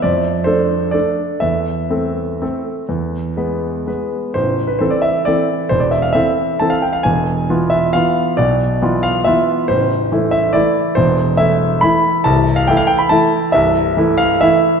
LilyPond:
<<
  \new Staff \with { instrumentName = "Grand piano" } { \time 3/4 \key a \minor \tempo 4 = 136 d''4 c''4 d''4 | e''2.~ | e''2 r4 | c''8. b'16 c''16 d''16 e''8 d''4 |
c''16 d''16 e''16 f''16 e''4 a''16 f''16 g''16 f''16 | gis''4. e''8 f''4 | d''4. f''8 e''4 | c''4. e''8 d''4 |
c''4 e''4 b''4 | a''8. f''16 g''16 f''16 g''16 b''16 a''4 | e''4. f''8 e''4 | }
  \new Staff \with { instrumentName = "Grand piano" } { \time 3/4 \key a \minor f,4 <a d' a'>4 <a d' a'>4 | e,4 <a c' a'>4 <a c' a'>4 | e,4 <gis b b'>4 <gis b b'>4 | <a,,, a,,>4 <e c' a'>4 <e c' a'>4 |
<e,, e,>4 <e c' a'>4 <e c' a'>4 | <e,, e,>4 <e b f'>4 <e b f'>4 | <b,, b,>4 <e b f'>4 <e b f'>4 | <a,,, a,,>4 <e a e'>4 <e a e'>4 |
<e,, e,>4 <e a e'>4 <e a e'>4 | <c,, c,>4 <e a e'>4 <e a e'>4 | <c,, c,>4 <e a e'>4 <e a e'>4 | }
>>